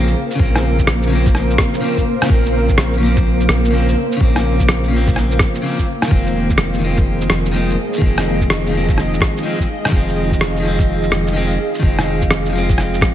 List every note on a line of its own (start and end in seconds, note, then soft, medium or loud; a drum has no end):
0.00 0.15 A#1 medium
0.00 0.13 C#3 medium
0.00 0.14 F3 medium
0.00 0.14 A#3 medium
0.00 7.99 A#3 medium
0.00 0.15 C4 medium
0.00 0.25 G#4 medium
0.00 6.99 A#4 medium
0.00 7.24 C5 medium
0.00 6.11 F5 medium
0.08 shaker soft
0.31 shaker medium
0.35 1.06 C#3 medium
0.35 1.08 F3 medium
0.40 1.58 A#1 loud
0.40 1.10 A#3 medium
0.40 kick loud
0.44 1.11 C4 medium
0.56 cross-stick soft
0.56 shaker soft
0.79 kick medium
0.79 shaker medium
0.87 cross-stick loud
1.02 shaker soft
1.07 1.79 C#3 medium
1.07 1.80 F3 medium
1.12 1.81 A#3 medium
1.12 1.83 C4 medium
1.26 kick loud
1.26 shaker medium
1.35 cross-stick soft
1.50 shaker soft
1.58 kick loud
1.58 cross-stick loud
1.74 shaker medium
1.80 2.03 C#3 medium
1.80 2.04 F3 medium
1.80 2.04 A#3 medium
1.80 2.05 C4 medium
1.98 kick medium
1.98 shaker soft
2.22 2.96 C#3 medium
2.22 cross-stick medium
2.22 shaker medium
2.29 3.48 A#1 loud
2.29 2.99 F3 medium
2.29 3.00 A#3 medium
2.29 kick loud
2.34 3.01 C4 medium
2.46 shaker soft
2.69 kick medium
2.69 shaker medium
2.78 cross-stick loud
2.93 shaker soft
2.98 3.69 C#3 medium
2.98 3.70 F3 medium
3.03 3.72 A#3 medium
3.03 3.73 C4 medium
3.17 kick loud
3.17 shaker medium
3.41 shaker soft
3.49 3.96 A#1 medium
3.49 cross-stick loud
3.65 shaker medium
3.71 3.93 C#3 medium
3.71 3.94 F3 medium
3.71 3.95 A#3 medium
3.75 3.96 C4 medium
3.89 shaker soft
4.12 shaker medium
4.17 5.39 A#1 medium
4.17 4.87 C#3 medium
4.17 4.89 F3 medium
4.21 4.91 A#3 medium
4.21 4.92 C4 medium
4.21 kick loud
4.36 cross-stick soft
4.36 shaker soft
4.60 kick medium
4.60 shaker medium
4.68 cross-stick loud
4.84 shaker soft
4.88 5.60 C#3 medium
4.88 5.61 F3 medium
4.93 5.62 A#3 medium
4.93 5.64 C4 medium
5.08 kick loud
5.08 shaker medium
5.16 cross-stick soft
5.31 shaker soft
5.39 kick loud
5.39 cross-stick loud
5.55 shaker medium
5.62 5.84 C#3 medium
5.62 5.85 F3 medium
5.62 5.86 A#3 medium
5.62 5.86 C4 medium
5.79 kick medium
5.79 shaker soft
6.02 cross-stick medium
6.02 shaker medium
6.08 7.29 F1 loud
6.08 6.77 D#3 medium
6.08 6.80 F3 medium
6.08 13.14 G#4 medium
6.08 kick loud
6.13 6.82 G#3 medium
6.13 6.83 C4 medium
6.27 13.14 D#5 medium
6.27 shaker soft
6.50 kick medium
6.50 shaker medium
6.58 cross-stick loud
6.74 13.14 F5 medium
6.74 shaker soft
6.79 7.50 D#3 medium
6.79 7.51 F3 medium
6.84 7.53 G#3 medium
6.84 7.54 C4 medium
6.97 kick loud
6.97 shaker medium
7.21 shaker soft
7.30 7.77 F1 medium
7.30 cross-stick loud
7.46 shaker medium
7.52 7.75 D#3 medium
7.52 7.75 F3 medium
7.52 7.76 G#3 medium
7.52 7.76 C4 medium
7.70 shaker soft
7.93 shaker medium
7.98 9.19 F1 loud
7.98 8.68 D#3 medium
7.98 8.71 F3 medium
7.98 kick loud
8.03 8.72 G#3 medium
8.03 8.73 C4 medium
8.18 cross-stick soft
8.18 shaker soft
8.41 kick medium
8.41 shaker medium
8.50 cross-stick loud
8.66 9.41 D#3 medium
8.66 shaker soft
8.72 9.42 F3 medium
8.72 9.43 G#3 medium
8.77 9.45 C4 medium
8.89 kick loud
8.89 shaker soft
8.98 cross-stick soft
9.14 shaker soft
9.21 kick loud
9.21 cross-stick loud
9.38 shaker soft
9.43 9.65 D#3 medium
9.43 9.66 F3 medium
9.43 9.67 G#3 medium
9.43 9.67 C4 medium
9.60 kick medium
9.60 shaker soft
9.85 10.59 D#3 medium
9.85 cross-stick medium
9.85 shaker soft
9.91 11.10 F1 loud
9.91 10.61 F3 medium
9.91 10.62 G#3 medium
9.91 kick loud
9.96 10.64 C4 medium
10.09 shaker soft
10.31 kick medium
10.31 shaker medium
10.41 cross-stick medium
10.57 11.31 D#3 medium
10.57 shaker soft
10.62 11.32 F3 medium
10.62 11.34 G#3 medium
10.68 11.35 C4 medium
10.79 kick medium
10.79 shaker medium
11.03 shaker soft
11.11 11.58 F1 medium
11.11 cross-stick loud
11.27 shaker medium
11.33 11.56 D#3 medium
11.33 11.56 F3 medium
11.33 11.57 G#3 medium
11.33 11.58 C4 loud
11.51 shaker soft
11.75 shaker medium
11.80 13.01 F1 loud
11.80 12.48 D#3 medium
11.80 12.49 F3 medium
11.80 kick loud
11.85 12.53 G#3 medium
11.85 12.54 C4 medium
11.99 cross-stick medium
11.99 shaker soft
12.22 kick medium
12.22 shaker medium
12.30 cross-stick medium
12.46 12.52 D#3 medium
12.46 shaker soft
12.53 13.14 F3 medium
12.53 13.14 G#3 medium
12.58 13.14 C4 medium
12.69 kick loud
12.69 shaker medium
12.78 cross-stick soft
12.94 shaker soft
13.01 kick loud
13.01 cross-stick loud